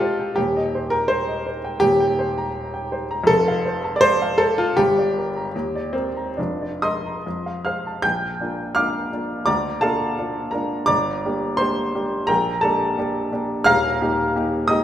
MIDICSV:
0, 0, Header, 1, 2, 480
1, 0, Start_track
1, 0, Key_signature, -2, "major"
1, 0, Tempo, 722022
1, 247, Time_signature, 2, 2, 24, 8
1, 1690, Tempo, 741656
1, 3130, Tempo, 768246
1, 3610, Tempo, 857143
1, 4570, Tempo, 788436
1, 5050, Tempo, 710900
1, 7930, Tempo, 682594
1, 9713, End_track
2, 0, Start_track
2, 0, Title_t, "Upright piano"
2, 0, Program_c, 0, 0
2, 0, Control_c, 0, 64, 127
2, 0, Note_on_c, 0, 36, 59
2, 0, Note_on_c, 0, 65, 93
2, 0, Note_on_c, 0, 67, 94
2, 0, Note_on_c, 0, 69, 96
2, 0, Note_on_c, 0, 72, 48
2, 0, Note_on_c, 0, 75, 54
2, 0, Note_on_c, 0, 79, 44
2, 10, Note_off_c, 0, 72, 0
2, 10, Note_on_c, 0, 72, 48
2, 82, Note_off_c, 0, 75, 0
2, 129, Note_off_c, 0, 79, 0
2, 129, Note_on_c, 0, 79, 52
2, 199, Note_off_c, 0, 72, 0
2, 202, Note_off_c, 0, 36, 0
2, 237, Note_off_c, 0, 67, 0
2, 237, Note_on_c, 0, 67, 98
2, 241, Note_off_c, 0, 65, 0
2, 245, Note_on_c, 0, 27, 60
2, 247, Note_off_c, 0, 79, 0
2, 252, Note_on_c, 0, 39, 65
2, 257, Control_c, 0, 64, 0
2, 262, Note_off_c, 0, 69, 0
2, 372, Control_c, 0, 64, 127
2, 376, Note_on_c, 0, 75, 55
2, 498, Note_on_c, 0, 72, 53
2, 563, Note_off_c, 0, 75, 0
2, 600, Note_on_c, 0, 70, 100
2, 601, Note_off_c, 0, 67, 0
2, 608, Note_on_c, 0, 79, 49
2, 685, Note_off_c, 0, 72, 0
2, 718, Note_on_c, 0, 72, 96
2, 724, Note_off_c, 0, 70, 0
2, 849, Note_on_c, 0, 75, 55
2, 963, Note_off_c, 0, 72, 0
2, 974, Note_on_c, 0, 72, 54
2, 992, Note_off_c, 0, 79, 0
2, 1040, Note_off_c, 0, 75, 0
2, 1094, Note_on_c, 0, 79, 61
2, 1163, Note_off_c, 0, 72, 0
2, 1180, Note_off_c, 0, 27, 0
2, 1184, Note_off_c, 0, 39, 0
2, 1196, Note_on_c, 0, 67, 120
2, 1204, Note_on_c, 0, 27, 67
2, 1210, Note_off_c, 0, 79, 0
2, 1212, Note_on_c, 0, 39, 73
2, 1218, Control_c, 0, 64, 0
2, 1312, Control_c, 0, 64, 127
2, 1332, Note_on_c, 0, 79, 64
2, 1455, Note_on_c, 0, 72, 57
2, 1522, Note_off_c, 0, 79, 0
2, 1581, Note_on_c, 0, 82, 60
2, 1644, Note_off_c, 0, 72, 0
2, 1817, Note_on_c, 0, 79, 57
2, 1935, Note_on_c, 0, 72, 54
2, 1956, Note_off_c, 0, 82, 0
2, 2003, Note_off_c, 0, 79, 0
2, 2056, Note_on_c, 0, 82, 66
2, 2122, Note_off_c, 0, 72, 0
2, 2138, Note_off_c, 0, 27, 0
2, 2139, Note_on_c, 0, 41, 79
2, 2142, Note_off_c, 0, 39, 0
2, 2160, Note_off_c, 0, 67, 0
2, 2160, Note_on_c, 0, 69, 123
2, 2168, Note_on_c, 0, 29, 74
2, 2171, Note_off_c, 0, 82, 0
2, 2179, Control_c, 0, 64, 0
2, 2296, Note_on_c, 0, 77, 62
2, 2300, Control_c, 0, 64, 127
2, 2412, Note_on_c, 0, 72, 59
2, 2482, Note_off_c, 0, 77, 0
2, 2532, Note_on_c, 0, 81, 60
2, 2594, Note_off_c, 0, 69, 0
2, 2599, Note_off_c, 0, 72, 0
2, 2608, Note_on_c, 0, 74, 94
2, 2638, Note_on_c, 0, 72, 127
2, 2649, Note_off_c, 0, 74, 0
2, 2775, Note_on_c, 0, 77, 64
2, 2878, Note_on_c, 0, 69, 114
2, 2881, Note_off_c, 0, 72, 0
2, 2893, Note_on_c, 0, 72, 56
2, 2912, Note_off_c, 0, 81, 0
2, 2963, Note_off_c, 0, 77, 0
2, 3002, Note_off_c, 0, 69, 0
2, 3009, Note_on_c, 0, 65, 105
2, 3013, Note_on_c, 0, 81, 61
2, 3084, Note_off_c, 0, 72, 0
2, 3089, Note_off_c, 0, 41, 0
2, 3103, Note_off_c, 0, 29, 0
2, 3129, Note_on_c, 0, 67, 119
2, 3130, Note_off_c, 0, 65, 0
2, 3132, Note_off_c, 0, 81, 0
2, 3137, Note_on_c, 0, 31, 68
2, 3141, Control_c, 0, 64, 0
2, 3142, Note_on_c, 0, 43, 70
2, 3237, Control_c, 0, 64, 127
2, 3263, Note_on_c, 0, 74, 58
2, 3384, Note_on_c, 0, 70, 55
2, 3446, Note_off_c, 0, 74, 0
2, 3504, Note_on_c, 0, 82, 55
2, 3568, Note_off_c, 0, 70, 0
2, 3598, Note_off_c, 0, 31, 0
2, 3601, Note_off_c, 0, 43, 0
2, 3616, Note_off_c, 0, 82, 0
2, 3620, Control_c, 0, 64, 0
2, 3621, Note_on_c, 0, 39, 69
2, 3733, Note_on_c, 0, 74, 58
2, 3734, Control_c, 0, 64, 127
2, 3830, Note_on_c, 0, 60, 81
2, 3833, Note_off_c, 0, 67, 0
2, 3843, Note_on_c, 0, 70, 46
2, 3910, Note_off_c, 0, 74, 0
2, 3964, Note_on_c, 0, 82, 50
2, 4031, Note_off_c, 0, 70, 0
2, 4070, Note_off_c, 0, 39, 0
2, 4076, Note_off_c, 0, 60, 0
2, 4078, Note_on_c, 0, 62, 66
2, 4084, Note_off_c, 0, 82, 0
2, 4086, Note_on_c, 0, 29, 56
2, 4090, Control_c, 0, 64, 0
2, 4092, Note_on_c, 0, 41, 55
2, 4217, Note_on_c, 0, 74, 47
2, 4226, Control_c, 0, 64, 127
2, 4331, Note_on_c, 0, 87, 92
2, 4335, Note_on_c, 0, 75, 70
2, 4336, Note_on_c, 0, 84, 74
2, 4342, Note_on_c, 0, 70, 46
2, 4410, Note_off_c, 0, 74, 0
2, 4463, Note_on_c, 0, 82, 46
2, 4528, Note_off_c, 0, 70, 0
2, 4558, Note_off_c, 0, 29, 0
2, 4561, Note_off_c, 0, 41, 0
2, 4569, Note_off_c, 0, 62, 0
2, 4575, Note_off_c, 0, 82, 0
2, 4579, Note_on_c, 0, 41, 53
2, 4580, Control_c, 0, 64, 0
2, 4694, Control_c, 0, 64, 127
2, 4699, Note_on_c, 0, 77, 44
2, 4793, Note_off_c, 0, 75, 0
2, 4794, Note_off_c, 0, 84, 0
2, 4808, Note_off_c, 0, 77, 0
2, 4811, Note_on_c, 0, 89, 77
2, 4815, Note_off_c, 0, 87, 0
2, 4817, Note_on_c, 0, 77, 62
2, 4822, Note_on_c, 0, 72, 40
2, 4945, Note_on_c, 0, 81, 43
2, 5007, Note_off_c, 0, 72, 0
2, 5033, Note_off_c, 0, 77, 0
2, 5039, Note_off_c, 0, 41, 0
2, 5041, Note_on_c, 0, 91, 109
2, 5046, Note_off_c, 0, 89, 0
2, 5049, Note_on_c, 0, 79, 72
2, 5053, Note_off_c, 0, 81, 0
2, 5055, Note_on_c, 0, 34, 60
2, 5060, Control_c, 0, 64, 0
2, 5182, Control_c, 0, 64, 127
2, 5288, Note_off_c, 0, 34, 0
2, 5298, Note_on_c, 0, 58, 46
2, 5299, Note_on_c, 0, 62, 42
2, 5304, Note_on_c, 0, 65, 52
2, 5509, Note_off_c, 0, 79, 0
2, 5514, Note_off_c, 0, 58, 0
2, 5515, Note_off_c, 0, 62, 0
2, 5517, Note_off_c, 0, 65, 0
2, 5528, Note_on_c, 0, 89, 107
2, 5531, Note_off_c, 0, 91, 0
2, 5535, Note_on_c, 0, 77, 67
2, 5535, Note_on_c, 0, 86, 75
2, 5546, Note_on_c, 0, 58, 46
2, 5546, Note_on_c, 0, 62, 44
2, 5548, Note_on_c, 0, 65, 46
2, 5760, Note_off_c, 0, 58, 0
2, 5760, Note_off_c, 0, 62, 0
2, 5761, Note_off_c, 0, 65, 0
2, 5783, Note_on_c, 0, 58, 42
2, 5785, Note_on_c, 0, 62, 44
2, 5789, Note_on_c, 0, 65, 48
2, 5993, Note_off_c, 0, 77, 0
2, 5993, Note_off_c, 0, 86, 0
2, 5998, Note_off_c, 0, 58, 0
2, 5999, Note_off_c, 0, 62, 0
2, 6001, Note_off_c, 0, 65, 0
2, 6007, Note_on_c, 0, 86, 105
2, 6013, Note_on_c, 0, 74, 78
2, 6016, Note_off_c, 0, 89, 0
2, 6016, Note_on_c, 0, 82, 76
2, 6022, Note_on_c, 0, 38, 61
2, 6031, Control_c, 0, 64, 0
2, 6143, Control_c, 0, 64, 127
2, 6237, Note_off_c, 0, 74, 0
2, 6239, Note_off_c, 0, 82, 0
2, 6247, Note_on_c, 0, 81, 96
2, 6251, Note_off_c, 0, 38, 0
2, 6251, Note_off_c, 0, 86, 0
2, 6253, Note_on_c, 0, 77, 68
2, 6258, Note_on_c, 0, 69, 70
2, 6264, Note_on_c, 0, 58, 50
2, 6264, Note_on_c, 0, 62, 49
2, 6268, Note_on_c, 0, 65, 50
2, 6473, Note_off_c, 0, 58, 0
2, 6473, Note_off_c, 0, 62, 0
2, 6475, Note_off_c, 0, 65, 0
2, 6499, Note_on_c, 0, 58, 46
2, 6503, Note_on_c, 0, 62, 50
2, 6504, Note_on_c, 0, 65, 49
2, 6700, Note_off_c, 0, 77, 0
2, 6703, Note_off_c, 0, 69, 0
2, 6709, Note_off_c, 0, 58, 0
2, 6712, Note_off_c, 0, 62, 0
2, 6712, Note_off_c, 0, 65, 0
2, 6718, Note_on_c, 0, 82, 72
2, 6724, Note_off_c, 0, 81, 0
2, 6728, Note_on_c, 0, 70, 58
2, 6737, Note_on_c, 0, 58, 46
2, 6741, Note_on_c, 0, 62, 49
2, 6743, Note_on_c, 0, 65, 45
2, 6951, Note_off_c, 0, 58, 0
2, 6953, Note_off_c, 0, 62, 0
2, 6953, Note_off_c, 0, 70, 0
2, 6954, Note_off_c, 0, 65, 0
2, 6954, Note_off_c, 0, 82, 0
2, 6955, Note_on_c, 0, 86, 110
2, 6964, Note_on_c, 0, 82, 76
2, 6967, Note_on_c, 0, 74, 80
2, 6973, Note_on_c, 0, 31, 70
2, 6985, Control_c, 0, 64, 0
2, 7097, Control_c, 0, 64, 127
2, 7208, Note_off_c, 0, 31, 0
2, 7219, Note_on_c, 0, 58, 49
2, 7222, Note_on_c, 0, 62, 49
2, 7225, Note_on_c, 0, 67, 57
2, 7423, Note_off_c, 0, 82, 0
2, 7425, Note_off_c, 0, 74, 0
2, 7433, Note_off_c, 0, 58, 0
2, 7434, Note_off_c, 0, 62, 0
2, 7436, Note_off_c, 0, 67, 0
2, 7436, Note_on_c, 0, 84, 105
2, 7444, Note_on_c, 0, 72, 70
2, 7446, Note_off_c, 0, 86, 0
2, 7452, Note_on_c, 0, 58, 50
2, 7455, Note_on_c, 0, 62, 51
2, 7459, Note_on_c, 0, 67, 56
2, 7667, Note_off_c, 0, 58, 0
2, 7668, Note_off_c, 0, 62, 0
2, 7670, Note_off_c, 0, 67, 0
2, 7690, Note_on_c, 0, 58, 51
2, 7694, Note_on_c, 0, 62, 46
2, 7694, Note_on_c, 0, 67, 52
2, 7896, Note_off_c, 0, 72, 0
2, 7903, Note_off_c, 0, 58, 0
2, 7905, Note_off_c, 0, 62, 0
2, 7905, Note_off_c, 0, 67, 0
2, 7907, Note_on_c, 0, 82, 104
2, 7915, Note_on_c, 0, 70, 75
2, 7918, Note_on_c, 0, 79, 79
2, 7919, Note_off_c, 0, 84, 0
2, 7924, Note_on_c, 0, 34, 73
2, 7942, Control_c, 0, 64, 0
2, 8055, Control_c, 0, 64, 127
2, 8147, Note_on_c, 0, 81, 95
2, 8148, Note_off_c, 0, 70, 0
2, 8150, Note_off_c, 0, 79, 0
2, 8158, Note_on_c, 0, 69, 70
2, 8162, Note_off_c, 0, 82, 0
2, 8163, Note_off_c, 0, 34, 0
2, 8164, Note_on_c, 0, 58, 54
2, 8167, Note_on_c, 0, 62, 51
2, 8171, Note_on_c, 0, 67, 60
2, 8385, Note_off_c, 0, 58, 0
2, 8387, Note_off_c, 0, 62, 0
2, 8389, Note_off_c, 0, 67, 0
2, 8389, Note_off_c, 0, 69, 0
2, 8401, Note_off_c, 0, 81, 0
2, 8402, Note_on_c, 0, 58, 52
2, 8408, Note_on_c, 0, 62, 52
2, 8411, Note_on_c, 0, 67, 58
2, 8621, Note_off_c, 0, 58, 0
2, 8624, Note_off_c, 0, 62, 0
2, 8626, Note_off_c, 0, 67, 0
2, 8642, Note_on_c, 0, 58, 54
2, 8648, Note_on_c, 0, 62, 55
2, 8653, Note_on_c, 0, 67, 57
2, 8860, Note_off_c, 0, 58, 0
2, 8863, Note_off_c, 0, 62, 0
2, 8866, Note_off_c, 0, 67, 0
2, 8873, Note_on_c, 0, 89, 127
2, 8883, Note_on_c, 0, 27, 71
2, 8883, Note_on_c, 0, 77, 108
2, 8885, Note_on_c, 0, 82, 109
2, 8890, Note_on_c, 0, 39, 77
2, 8900, Control_c, 0, 64, 0
2, 9004, Control_c, 0, 64, 127
2, 9116, Note_off_c, 0, 27, 0
2, 9119, Note_off_c, 0, 39, 0
2, 9133, Note_on_c, 0, 58, 60
2, 9134, Note_on_c, 0, 63, 60
2, 9138, Note_on_c, 0, 67, 69
2, 9345, Note_off_c, 0, 58, 0
2, 9345, Note_off_c, 0, 63, 0
2, 9347, Note_off_c, 0, 67, 0
2, 9376, Note_on_c, 0, 58, 55
2, 9378, Note_on_c, 0, 63, 56
2, 9378, Note_on_c, 0, 67, 67
2, 9575, Note_off_c, 0, 77, 0
2, 9576, Note_off_c, 0, 82, 0
2, 9588, Note_off_c, 0, 58, 0
2, 9589, Note_off_c, 0, 63, 0
2, 9589, Note_off_c, 0, 67, 0
2, 9598, Note_off_c, 0, 89, 0
2, 9598, Note_on_c, 0, 87, 106
2, 9608, Note_on_c, 0, 75, 79
2, 9613, Note_on_c, 0, 58, 57
2, 9618, Note_on_c, 0, 63, 55
2, 9619, Note_on_c, 0, 67, 69
2, 9713, Note_off_c, 0, 58, 0
2, 9713, Note_off_c, 0, 63, 0
2, 9713, Note_off_c, 0, 67, 0
2, 9713, Note_off_c, 0, 75, 0
2, 9713, Note_off_c, 0, 87, 0
2, 9713, End_track
0, 0, End_of_file